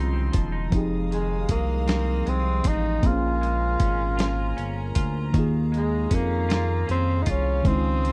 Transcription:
Already playing: C2 C#3 D#3 F3 G#3 C4 D#4 F4 D#5 C6
0.13 C4
0.33 E1 F3, kick, closed hi-hat
0.52 D#4
0.70 F1 F2 F3 G#3 C4 D#4 F5 D#6, kick, closed hi-hat
0.76 G4 G#4
1.11 D#3 G#3, closed hi-hat
1.49 C2 G#3 A#3, kick, closed hi-hat
1.87 C4, snare, closed hi-hat
2.26 C2 G#3 C4, closed hi-hat
2.64 A1 C4 D#4, kick, closed hi-hat
3.01 A#1 A#2 A#3 C4 A#4 G#5 A#5, kick, closed hi-hat
3.06 F4 G#4 C5
3.11 C#4
3.41 G#3, closed hi-hat
3.80 G#1 C#4, kick, closed hi-hat
4.17 F4, snare, closed hi-hat
4.57 G1 C#4, closed hi-hat
4.95 D2 F4, kick, closed hi-hat
5.32 D#2 D#3 A#3 D#4 G#4 F5, kick, closed hi-hat
5.38 F4 G#4
5.72 G#3, closed hi-hat
5.76 G#3
6.11 F2 C#4, kick, closed hi-hat
6.15 A#3
6.49 F4, snare, closed hi-hat
6.87 F2 C4 C#4, closed hi-hat
7.22 D#4, closed hi-hat
7.26 C2 C#4 F4, kick
7.63 C#2 C#3 D#3 G#3 C4 C5 D#6, kick, closed hi-hat
7.67 C4 D#4 E4
7.76 F4
8.03 F3, closed hi-hat

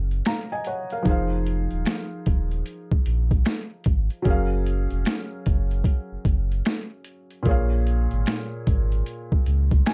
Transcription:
Already playing: F#1 F#3 C#4 G#4 A#4 F5
0.11 closed hi-hat
0.25 F5 A#5, finger snap, snare, closed hi-hat
0.52 D#5 G#5
0.64 C#5 F#5, closed hi-hat
0.90 A#4 F5, closed hi-hat
1.02 F1 F3 D#4, kick, closed hi-hat
1.07 G#4 C5
1.11 F5
1.47 closed hi-hat
1.71 D#1, closed hi-hat
1.85 finger snap, snare, closed hi-hat
2.26 D#1, kick, closed hi-hat
2.51 closed hi-hat
2.66 closed hi-hat
2.92 A#1, kick
3.06 A#1, closed hi-hat
3.31 kick, closed hi-hat
3.45 finger snap, snare, closed hi-hat
3.84 G#1, kick, closed hi-hat
4.10 closed hi-hat
4.22 F#1 F#3 C#4, kick, closed hi-hat
4.26 G#4 A#4
4.30 F5
4.66 closed hi-hat
4.91 F1, closed hi-hat
5.05 finger snap, snare, closed hi-hat
5.46 F#1, kick, closed hi-hat
5.71 closed hi-hat
5.84 kick, closed hi-hat
6.12 F#1
6.25 F#1, kick, closed hi-hat
6.52 closed hi-hat
6.65 finger snap, snare, closed hi-hat
7.04 closed hi-hat
7.30 closed hi-hat
7.43 A#1 A#2 A#3, kick, closed hi-hat
7.47 G#4 C#5
7.51 F5
7.87 closed hi-hat
8.11 G#1, closed hi-hat
8.26 finger snap, snare, closed hi-hat
8.67 G#1, kick, closed hi-hat
8.92 closed hi-hat
9.06 closed hi-hat
9.32 C#2, kick
9.46 C#2, closed hi-hat
9.71 kick, closed hi-hat
9.86 G#5, finger snap, snare, closed hi-hat

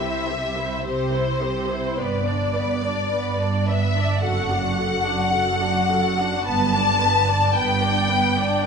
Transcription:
Already playing: C2 C3 E5
0.02 E4 C5
0.29 C4 G4
0.58 E4 C5
0.85 C2 C3 C4 G4 C5
1.13 E4 C5
1.42 C4 G4
1.69 E4 C5
1.97 G1 G2 B3 B4 D5
2.26 D4 D5
2.55 B3 B4
2.83 D4 D5
3.12 G1 G2 B3 B4
3.40 D4 D5
3.67 B3 B4 E5
3.96 D4 D5
4.23 F#1 F#2 F#4 A4 F#5
4.50 D4 F#4
4.78 F#4 A4
5.05 D4 F#4
5.33 F#1 F#2 F#4 A4
5.62 D4 F#4
5.91 F#4 A4
6.18 D4 F#4
6.45 G1 G2 B3 B4 A5
6.74 D4 D5
7.02 B3 B4
7.28 D4 D5
7.54 G1 G2 B3 B4 G5
7.83 D4 D5
8.10 B3 B4
8.38 D4 D5

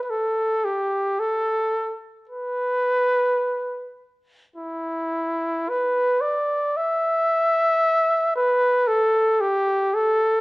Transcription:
0.03 B4
0.10 A4
0.65 G4
1.19 A4
2.30 B4
4.56 E4
5.69 B4
6.21 D5
6.77 E5
8.36 B4
8.88 A4
9.41 G4
9.94 A4

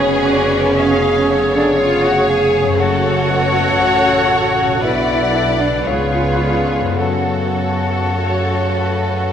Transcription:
Already playing: F1 F2 B2 C#3 B3 C#4 G#4 B4 C#5 G#5
0.26 F#4 D5
0.77 B2 G#4 C#5 F5
1.29 C#3 A4 C#5
1.54 D4 D5
1.77 F4 G#4 C#5 F5
2.04 F#4 F#5
2.29 G#4 G#5
2.61 F#2
2.65 A3
2.70 C#4
2.75 F#4 A4 C#5 F#5
2.79 F#1 C#3 A3 F#4 A4 F#5
3.26 B2 C#5
3.79 A1 C#3
4.63 B2
4.68 B3
4.73 D4
4.78 B2 B3 F#4 B4 D5 F#5
4.82 B1 D3 D4 E4 B4 E5
5.34 A4
5.61 D4 D5
5.69 C#3
5.73 G#3
5.78 C#4
5.82 G#4 B4 C#5
5.86 C#2 G#2 C#3 C#4 F4 G#4 C#5 F5
6.44 D3
6.80 F#2
6.85 A3
6.90 C#4
6.95 A4 C#5 F#5
6.99 F#2 C#3 F#4 A4 F#5
8.17 A3 C#5
8.75 B4

